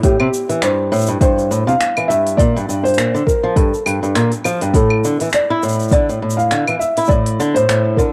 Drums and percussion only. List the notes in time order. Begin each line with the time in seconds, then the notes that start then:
0.03 kick, open hi-hat, shaker
0.20 claves
0.34 shaker
0.50 open hi-hat, shaker
0.62 finger snap, open hi-hat, shaker
0.93 shaker
0.96 shaker
0.99 shaker
1.01 shaker
1.07 shaker
1.09 shaker
1.21 kick, open hi-hat, shaker
1.39 shaker
1.52 shaker
1.68 shaker
1.81 finger snap, open hi-hat, shaker
1.97 open hi-hat, claves
2.11 shaker
2.27 open hi-hat, shaker
2.38 kick, open hi-hat, shaker
2.57 shaker
2.70 shaker
2.85 open hi-hat, shaker
2.88 open hi-hat
2.94 open hi-hat
2.98 finger snap, open hi-hat, shaker
3.16 shaker
3.27 kick, shaker
3.56 kick, open hi-hat, shaker
3.74 shaker
3.86 claves, shaker
4.04 shaker
4.15 finger snap, open hi-hat, shaker
4.32 open hi-hat, shaker
4.44 claves, shaker
4.61 open hi-hat, shaker
4.74 kick, open hi-hat, shaker
4.90 claves
5.04 shaker
5.20 open hi-hat, shaker
5.24 shaker
5.29 finger snap, open hi-hat, shaker
5.34 shaker
5.63 shaker
5.69 shaker
5.72 shaker
5.79 shaker
5.82 shaker
5.88 kick, open hi-hat, shaker
5.93 shaker
6.10 shaker
6.30 shaker
6.39 shaker
6.51 finger snap, open hi-hat, shaker
6.68 open hi-hat, claves
6.81 shaker
6.97 open hi-hat, shaker
7.00 shaker
7.04 shaker
7.06 shaker
7.08 kick, shaker
7.11 shaker
7.26 open hi-hat
7.40 shaker
7.56 open hi-hat, shaker
7.69 finger snap, open hi-hat, shaker
7.97 kick, shaker